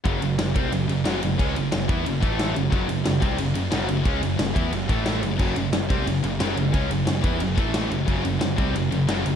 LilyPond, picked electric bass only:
\new Staff \with { instrumentName = "Picked electric bass" } { \clef bass \time 4/4 \key fis \phrygian \tempo 4 = 179 fis,,8 fis,,8 fis,,8 bis,,8 fis,,8 fis,,8 fis,,8 fis,,8 | cis,8 fis,,8 fis,,8 e,8 fis,,8 a,,4 fis,,8 | fis,,8 fis,,8 fis,,8 bis,,8 fis,,8 fis,,8 fis,,8 fis,,8 | cis,8 fis,,8 fis,,8 e,8 fis,,8 a,,4 fis,,8 |
fis,,8 fis,,8 fis,,8 bis,,8 fis,,8 fis,,8 fis,,8 fis,,8 | cis,8 fis,,8 fis,,8 e,8 fis,,8 a,,4 fis,,8 | fis,,8 fis,,8 fis,,8 bis,,8 fis,,8 fis,,8 fis,,8 fis,,8 | }